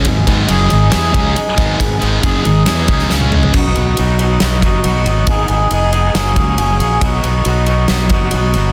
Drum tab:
CC |----------------|----------------|x---------------|----------------|
RD |x-x-x-x-x-x-x-x-|x-x-x-x-x-x-----|--x-x-x-x-x-x-x-|x-x-x-x-x-x-x-x-|
SD |--------o-------|--------o--oo---|--------o-------|--------o-------|
T1 |----------------|-------------o--|----------------|----------------|
T2 |----------------|--------------o-|----------------|----------------|
FT |----------------|---------------o|----------------|----------------|
BD |o-o-------o---o-|o---o-----o-----|o---------o-----|o---------o-----|

CC |----------------|
RD |x-x-x-x-x-x-x-x-|
SD |--------o-------|
T1 |----------------|
T2 |----------------|
FT |----------------|
BD |o---------o-----|